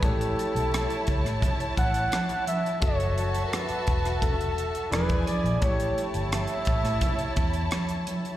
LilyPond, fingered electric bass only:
\new Staff \with { instrumentName = "Fingered electric bass" } { \clef bass \time 4/4 \key a \mixolydian \tempo 4 = 86 a,,8 r16 b,,8 r16 cis,16 a,16 r8 a,,8 r4 | fis,,4 r8 e,,4~ e,,16 r16 e,,8 r16 ais,,16 | a,,8 r16 g,,8 r16 a,,16 a,16 r8 e,8 r4 | }